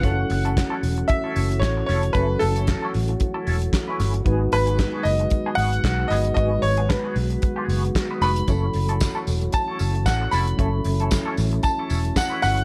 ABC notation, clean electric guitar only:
X:1
M:4/4
L:1/16
Q:"Swing 16ths" 1/4=114
K:F#dor
V:1 name="Clean electric guitar"
[CEA] z2 [CEA] z [CEA] z3 [CEA] [CEA] z3 [CEA] z | [CEA] z2 [CEA] z [CEA] z3 [CEA] [CEA] z2 [CEB] [CEB] z | [B,FG] z2 [B,FG] z [B,FG] z3 [B,FG] [B,FG] z3 [B,FG] z | [B,FG] z2 [B,FG] z [B,FG] z3 [B,FG] [B,FG] z2 [B,FB] [B,FB] z |
[CEA] z2 [CEA] z [CEA] z3 [CEA] [CEA] z3 [CEA] z | [CEA] z2 [CEA] z [CEA] z3 [CEA] [CEA] z2 [CEB] C z |]